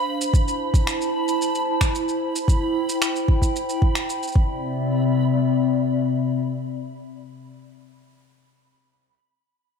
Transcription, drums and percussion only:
0.21 shaker medium
0.34 kick loud
0.34 shaker soft
0.48 shaker soft
0.74 kick medium
0.74 shaker medium
0.87 finger snap medium
0.87 shaker soft
1.01 shaker soft
1.28 shaker medium
1.42 shaker soft
1.55 shaker soft
1.81 finger snap medium
1.81 kick medium
1.81 shaker soft
1.95 shaker soft
2.09 shaker soft
2.36 shaker medium
2.48 kick loud
2.48 shaker soft
2.89 shaker medium
3.02 finger snap medium
3.02 shaker soft
3.16 shaker soft
3.28 kick medium
3.42 kick medium
3.42 shaker soft
3.56 shaker soft
3.69 shaker soft
3.82 kick medium
3.95 finger snap medium
3.95 shaker medium
4.09 shaker soft
4.23 shaker soft
4.28 shaker soft
4.32 kick loud
4.32 shaker soft

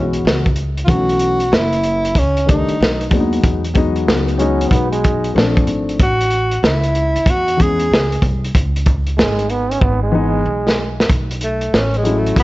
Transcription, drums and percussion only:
0.13 closed hi-hat soft
0.27 snare loud
0.46 kick medium
0.46 closed hi-hat soft
0.56 closed hi-hat medium
0.78 closed hi-hat soft
0.88 kick loud
0.88 closed hi-hat medium
1.09 closed hi-hat medium
1.19 closed hi-hat medium
1.40 closed hi-hat soft
1.53 snare loud
1.73 closed hi-hat soft
1.83 closed hi-hat medium
2.05 closed hi-hat medium
2.15 kick loud
2.15 closed hi-hat medium
2.37 closed hi-hat soft
2.49 kick medium
2.49 closed hi-hat medium
2.68 closed hi-hat medium
2.83 snare loud
3.01 closed hi-hat soft
3.11 kick medium
3.11 closed hi-hat medium
3.33 closed hi-hat soft
3.44 kick loud
3.44 closed hi-hat medium
3.65 closed hi-hat medium
3.75 kick medium
3.75 closed hi-hat medium
3.96 closed hi-hat soft
4.08 snare loud
4.28 closed hi-hat soft
4.39 closed hi-hat medium
4.61 closed hi-hat medium
4.71 kick medium
4.71 closed hi-hat medium
4.92 closed hi-hat soft
5.04 kick medium
5.04 closed hi-hat medium
5.24 closed hi-hat medium
5.38 snare loud
5.57 kick medium
5.57 closed hi-hat soft
5.67 closed hi-hat medium
5.89 closed hi-hat soft
5.99 kick loud
5.99 closed hi-hat medium
6.21 closed hi-hat medium
6.30 closed hi-hat medium
6.52 closed hi-hat soft
6.64 snare loud
6.84 closed hi-hat soft
6.95 closed hi-hat medium
7.16 closed hi-hat medium
7.26 kick loud
7.26 closed hi-hat medium
7.48 closed hi-hat soft
7.60 kick medium
7.60 closed hi-hat medium
7.80 closed hi-hat medium
7.94 snare loud
8.12 closed hi-hat soft
8.22 kick medium
8.22 closed hi-hat medium
8.44 closed hi-hat medium
8.55 kick loud
8.55 closed hi-hat medium
8.76 closed hi-hat medium
8.86 kick medium
8.86 closed hi-hat medium
9.07 closed hi-hat soft
9.19 snare loud
9.39 closed hi-hat soft
9.50 closed hi-hat medium
9.71 closed hi-hat medium
9.81 kick loud
10.69 snare medium
11.00 snare medium
11.09 kick loud
11.09 closed hi-hat medium
11.31 closed hi-hat medium
11.41 closed hi-hat medium
11.61 closed hi-hat soft
11.74 snare loud
11.94 closed hi-hat soft
12.05 closed hi-hat medium
12.26 closed hi-hat soft
12.36 kick medium
12.36 closed hi-hat medium

